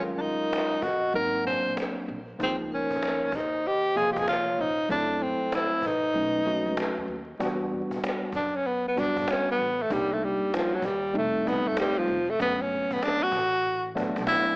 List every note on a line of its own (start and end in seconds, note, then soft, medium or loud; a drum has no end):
0.00 0.30 D#2 medium
0.00 0.83 F#3 medium
0.00 0.83 G#3 medium
0.00 0.83 C#4 medium
0.00 0.83 F4 medium
0.16 0.23 D4 medium
0.16 0.18 A#4 soft
0.16 0.83 A#4 medium
0.21 0.84 D#4 medium
0.21 cajon slap soft
0.42 cajon slap soft
0.53 cajon slap loud
0.82 1.07 F2 medium
0.82 1.14 F#4 medium
0.82 1.14 D#5 medium
0.82 cajon bass medium
1.04 cajon slap soft
1.13 1.55 G#1 loud
1.13 1.41 F#3 medium
1.13 1.41 A#3 medium
1.13 1.42 C4 medium
1.13 1.42 D#4 medium
1.13 1.44 A#4 loud
1.13 1.43 F#5 medium
1.45 2.17 F#3 medium
1.45 2.17 A#3 medium
1.45 2.18 C4 medium
1.45 2.18 D4 medium
1.45 1.75 C5 loud
1.45 1.74 G#5 medium
1.45 cajon bass medium
1.65 1.74 A#1 medium
1.65 cajon slap soft
1.77 cajon slap loud
2.08 2.33 A#1 medium
2.08 cajon slap soft
2.28 cajon slap soft
2.39 2.80 C#2 medium
2.39 2.48 D#3 medium
2.39 3.33 A#3 medium
2.39 3.33 D#4 medium
2.39 2.55 G#4 medium
2.39 3.33 C5 medium
2.39 cajon bass loud
2.43 3.36 F3 medium
2.43 2.56 C4 medium
2.71 3.37 C#4 medium
2.71 3.30 A#4 medium
2.71 cajon slap soft
2.90 cajon bass medium
3.03 cajon slap loud
3.32 4.11 D#2 medium
3.32 3.69 D#4 medium
3.32 3.66 C5 medium
3.32 cajon bass medium
3.54 cajon slap soft
3.65 3.98 G4 loud
3.65 3.97 D#5 medium
3.65 cajon slap soft
3.95 4.68 C3 medium
3.95 4.68 F3 medium
3.95 4.68 A#3 medium
3.95 4.68 F4 medium
3.95 4.12 G#4 loud
3.95 4.12 F5 medium
3.95 cajon bass medium
4.11 4.20 G4 medium
4.11 4.16 D#5 medium
4.16 4.25 F2 medium
4.16 4.28 G#4 loud
4.16 4.28 F5 medium
4.16 cajon bass loud
4.27 4.62 F4 loud
4.27 4.56 C#5 medium
4.27 cajon slap loud
4.58 4.83 D#1 medium
4.58 4.91 D#4 medium
4.58 4.89 C5 medium
4.58 cajon slap soft
4.78 cajon slap soft
4.89 5.30 F#1 loud
4.89 5.82 F#3 medium
4.89 5.83 A3 medium
4.89 5.83 C4 medium
4.89 5.24 D4 loud
4.89 5.83 E4 medium
4.89 5.19 A4 medium
4.89 cajon bass loud
5.21 5.56 C4 medium
5.21 cajon slap soft
5.41 cajon slap soft
5.52 5.88 E4 medium
5.52 5.83 C5 medium
5.52 cajon slap loud
5.72 cajon slap soft
5.82 6.14 A1 medium
5.82 7.09 B4 medium
5.82 cajon bass medium
5.86 7.10 D#4 medium
6.04 cajon slap soft
6.14 6.55 B1 loud
6.14 6.41 F#3 medium
6.14 6.41 A3 medium
6.14 6.42 C#4 medium
6.14 6.42 D#4 medium
6.14 cajon slap soft
6.45 7.18 F#3 medium
6.45 7.18 A3 medium
6.45 7.18 C#4 medium
6.45 7.18 F#4 medium
6.66 6.75 C#2 medium
6.66 cajon slap soft
6.77 cajon slap loud
6.97 7.06 D#2 medium
6.97 cajon slap soft
7.08 7.33 D#2 medium
7.08 cajon slap soft
7.28 cajon slap soft
7.39 7.80 E2 loud
7.39 8.33 G3 medium
7.39 8.33 B3 medium
7.39 8.33 D4 medium
7.39 8.34 F#4 loud
7.39 cajon bass loud
7.71 cajon slap soft
7.91 cajon bass medium
8.04 cajon slap loud
8.32 9.11 F#2 medium
8.32 8.57 D4 medium
8.32 cajon bass medium
8.55 8.68 C#4 medium
8.55 cajon slap soft
8.65 8.86 B3 medium
8.65 cajon slap medium
8.86 9.01 B3 medium
8.86 cajon slap soft
8.96 9.68 G3 medium
8.96 9.68 B3 medium
8.96 9.68 D4 medium
8.96 9.32 D4 medium
8.96 9.69 F#4 medium
8.96 cajon bass medium
9.16 9.25 G2 medium
9.16 cajon bass loud
9.28 9.49 C#4 medium
9.28 cajon slap loud
9.51 9.83 B3 medium
9.58 9.83 A1 medium
9.58 cajon slap soft
9.78 9.94 A3 medium
9.78 cajon slap soft
9.90 10.31 C2 loud
9.90 10.83 G3 medium
9.90 10.14 G3 medium
9.90 10.83 A#3 medium
9.90 10.83 D4 medium
9.90 10.84 D#4 medium
9.90 cajon bass loud
10.13 10.26 A3 medium
10.21 10.56 G3 medium
10.21 cajon slap soft
10.42 cajon slap soft
10.54 10.76 F3 medium
10.54 cajon slap loud
10.75 10.87 F#3 medium
10.82 11.17 D#2 loud
10.82 11.16 G3 medium
10.82 cajon bass medium
11.05 cajon slap soft
11.14 11.55 F1 loud
11.14 11.41 G3 medium
11.14 11.41 A3 medium
11.14 11.41 C4 medium
11.14 11.42 D#4 medium
11.14 cajon slap medium
11.18 11.49 A3 medium
11.45 12.17 G3 medium
11.45 12.17 A3 medium
11.45 11.69 B3 medium
11.45 12.18 C4 medium
11.45 12.18 D#4 medium
11.45 cajon bass medium
11.66 11.74 G1 medium
11.66 11.80 A3 medium
11.66 cajon slap soft
11.77 12.00 G3 loud
11.77 cajon slap loud
11.98 12.31 F3 medium
12.08 12.33 F1 medium
12.08 cajon slap soft
12.28 12.40 A3 medium
12.28 cajon slap soft
12.39 12.80 G1 loud
12.39 13.33 F#3 medium
12.39 13.33 A3 medium
12.39 13.33 B3 medium
12.39 12.63 B3 loud
12.39 13.33 C#4 medium
12.39 cajon bass loud
12.62 12.94 C#4 loud
12.70 cajon slap soft
12.91 13.04 B3 medium
12.91 cajon bass medium
13.03 13.24 D4 loud
13.03 cajon slap loud
13.23 13.88 F#4 loud
13.32 14.11 A1 loud
13.32 cajon bass loud
13.54 cajon slap soft
13.65 cajon slap medium
13.85 cajon slap soft
13.95 14.56 F#3 medium
13.95 14.56 A3 medium
13.95 14.56 B3 medium
13.95 14.56 D4 loud
13.95 cajon bass medium
14.16 14.25 B1 medium
14.16 cajon bass loud
14.27 14.56 E4 medium
14.27 cajon slap loud